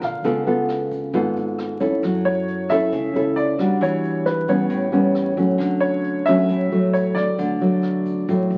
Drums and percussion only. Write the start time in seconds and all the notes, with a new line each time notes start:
0.02 cross-stick, closed hi-hat, shaker
0.24 kick, closed hi-hat, shaker
0.46 closed hi-hat, shaker
0.68 cross-stick, closed hi-hat, shaker
0.91 kick, closed hi-hat, shaker
1.13 kick, closed hi-hat, shaker
1.36 closed hi-hat, shaker
1.59 cross-stick, closed hi-hat
1.80 kick, closed hi-hat, shaker
2.02 kick, cross-stick, closed hi-hat, shaker
2.25 closed hi-hat, shaker
2.48 closed hi-hat
2.69 kick, cross-stick, closed hi-hat, shaker
2.92 kick, closed hi-hat, shaker
3.14 closed hi-hat, shaker
3.37 closed hi-hat, shaker
3.59 cross-stick, closed hi-hat, shaker
3.81 kick, closed hi-hat, shaker
4.03 closed hi-hat, shaker
4.26 cross-stick, closed hi-hat
4.47 kick, closed hi-hat, shaker
4.70 kick, closed hi-hat, shaker
4.93 closed hi-hat, shaker
5.15 cross-stick, closed hi-hat, shaker
5.37 kick, closed hi-hat, shaker
5.60 kick, cross-stick, closed hi-hat, shaker
5.82 closed hi-hat, shaker
6.04 closed hi-hat
6.26 kick, cross-stick, closed hi-hat, shaker
6.49 kick, closed hi-hat, shaker
6.71 closed hi-hat, shaker
6.94 closed hi-hat, shaker
7.16 cross-stick, closed hi-hat, shaker
7.39 kick, closed hi-hat, shaker
7.61 closed hi-hat, shaker
7.83 cross-stick, closed hi-hat
8.06 kick, closed hi-hat, shaker
8.29 kick, closed hi-hat, shaker
8.51 closed hi-hat, shaker